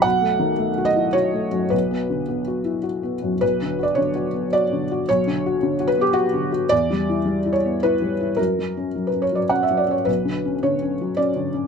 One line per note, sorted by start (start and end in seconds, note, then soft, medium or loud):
0.02 1.68 B1 medium
0.02 0.86 F#5 loud
0.21 0.51 A3 medium
0.39 0.70 D#3 medium
0.58 0.88 A3 medium
0.78 1.08 F#4 soft
0.85 1.14 D#5 loud
0.96 1.15 E4 soft
1.13 1.45 F#4 medium
1.13 1.72 C#5 medium
1.33 1.65 A3 soft
1.51 1.72 F#2 soft
1.70 3.38 B1 medium
1.70 3.13 B4 medium
1.91 2.22 B3 soft
2.10 2.41 D3 soft
2.28 2.59 B3 soft
2.47 2.78 F#4 soft
2.65 2.85 E4 soft
2.83 3.15 F#4 soft
3.03 3.34 B3 soft
3.22 3.42 F#2 soft
3.41 5.03 B1 medium
3.41 3.83 B4 medium
3.62 3.91 D3 soft
3.79 4.08 F#4 soft
3.83 3.97 D5 medium
3.95 4.27 D3 soft
3.95 4.52 C#5 medium
4.15 4.45 F#4 soft
4.34 4.63 B3 soft
4.53 4.82 F#4 medium
4.53 5.07 D5 loud
4.73 5.01 D3 soft
4.91 5.19 F#4 medium
5.09 6.69 B1 medium
5.09 5.89 C#5 loud
5.27 5.55 D3 soft
5.46 5.73 F#4 medium
5.63 5.90 D3 medium
5.80 6.08 F#4 medium
5.88 6.01 B4 loud
5.97 6.26 B3 medium
6.01 6.15 G4 loud
6.13 6.51 F#4 loud
6.34 6.64 D3 soft
6.52 6.71 F#4 medium
6.69 8.34 E2 medium
6.69 7.52 D5 loud
6.91 7.19 G3 soft
7.09 7.37 E4 medium
7.25 7.55 G3 soft
7.45 7.74 E4 soft
7.53 7.81 C#5 medium
7.65 7.94 B3 soft
7.83 8.13 E4 soft
7.83 8.39 B4 medium
8.02 8.31 G3 soft
8.21 8.39 E4 soft
8.37 10.03 F#2 medium
8.37 9.08 A#4 medium
8.59 8.88 F#3 soft
8.77 9.06 C#4 soft
8.95 9.25 F#3 soft
9.07 9.22 B4 medium
9.13 9.43 C#4 soft
9.22 9.36 C#5 medium
9.32 9.62 F#3 soft
9.32 9.50 D5 medium
9.49 9.81 C#4 soft
9.49 9.64 F#5 medium
9.63 9.78 E5 medium
9.71 10.01 F#3 soft
9.77 9.93 D5 medium
9.88 10.07 C#4 soft
9.88 10.06 C#5 medium
10.05 11.67 B1 soft
10.05 10.62 B4 medium
10.25 10.55 D3 soft
10.45 10.74 C#4 soft
10.63 10.93 D3 soft
10.63 11.18 C#5 medium
10.82 11.11 C#4 soft
11.01 11.30 F#3 soft
11.17 11.47 C#4 soft
11.17 11.67 D5 medium
11.36 11.66 D3 soft
11.54 11.67 C#4 soft